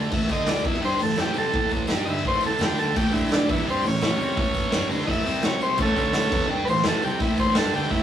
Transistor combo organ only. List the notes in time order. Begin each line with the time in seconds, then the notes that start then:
0.14 E5
0.32 D#5
0.47 D5
0.67 E5
0.85 C5
1.03 A4
1.20 G4
1.38 A4
2.05 D#5
2.10 E5
2.27 C5
2.46 A4
2.63 G4
2.79 A4
2.97 G4
3.13 E4
3.32 D4
3.51 E4
3.70 C4
3.87 C#4
5.07 D#5
5.11 E5
5.45 C#5
5.62 C5
5.81 C#4 A4
6.65 B4
6.70 C5
6.88 A4
7.04 G4
7.21 E4
7.40 C5
7.58 A4
7.75 G4
7.91 E4